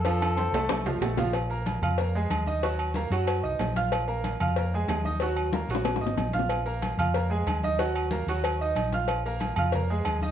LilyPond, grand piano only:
\new Staff \with { instrumentName = "Grand piano" } { \time 4/4 \key ees \dorian \tempo 4 = 186 <f f' f''>4 <c' c'' c'''>8 <a a' a''>4 <f f' f''>8 <a a' a''>8 <f f' f''>8 | r8 <bes bes' bes''>4 <f' f'' f'''>8 <bes bes' bes''>8 <aes aes' aes''>4 <ees' ees'' ees'''>8 | <ges ges' ges''>4 <bes bes' bes''>8 <ges ges' ges''>4 <ees' ees'' ees'''>4 <f' f'' f'''>8~ | <f' f'' f'''>8 <bes bes' bes''>4 <f' f'' f'''>8 <bes bes' bes''>8 <aes aes' aes''>4 <ees' ees'' ees'''>8 |
<ges ges' ges''>4 <bes bes' bes''>8 <ges ges' ges''>4 <ees' ees'' ees'''>4 <f' f'' f'''>8~ | <f' f'' f'''>8 <bes bes' bes''>4 <f' f'' f'''>8 <bes bes' bes''>8 <aes aes' aes''>4 <ees' ees'' ees'''>8 | <ges ges' ges''>4 <bes bes' bes''>8 <ges ges' ges''>4 <ees' ees'' ees'''>4 <f' f'' f'''>8~ | <f' f'' f'''>8 <bes bes' bes''>4 <f' f'' f'''>8 <bes bes' bes''>8 <aes aes' aes''>4 <ees' ees'' ees'''>8 | }